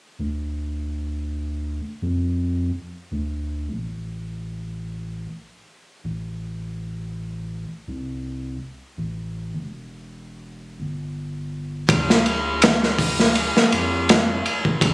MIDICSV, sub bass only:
0, 0, Header, 1, 2, 480
1, 0, Start_track
1, 0, Key_signature, -1, "minor"
1, 0, Tempo, 731707
1, 119, Time_signature, 4, 2, 24, 8
1, 9799, End_track
2, 0, Start_track
2, 0, Title_t, "Sub bass"
2, 0, Program_c, 0, 38
2, 123, Note_on_c, 0, 38, 98
2, 1183, Note_off_c, 0, 38, 0
2, 1324, Note_on_c, 0, 41, 87
2, 1780, Note_off_c, 0, 41, 0
2, 2041, Note_on_c, 0, 38, 100
2, 2409, Note_on_c, 0, 33, 87
2, 2418, Note_off_c, 0, 38, 0
2, 3459, Note_off_c, 0, 33, 0
2, 3962, Note_on_c, 0, 33, 99
2, 5023, Note_off_c, 0, 33, 0
2, 5165, Note_on_c, 0, 36, 87
2, 5620, Note_off_c, 0, 36, 0
2, 5886, Note_on_c, 0, 33, 97
2, 6251, Note_on_c, 0, 28, 86
2, 6260, Note_off_c, 0, 33, 0
2, 7079, Note_off_c, 0, 28, 0
2, 7083, Note_on_c, 0, 31, 84
2, 7779, Note_off_c, 0, 31, 0
2, 7801, Note_on_c, 0, 38, 101
2, 8862, Note_off_c, 0, 38, 0
2, 9003, Note_on_c, 0, 41, 83
2, 9459, Note_off_c, 0, 41, 0
2, 9719, Note_on_c, 0, 38, 97
2, 9799, Note_off_c, 0, 38, 0
2, 9799, End_track
0, 0, End_of_file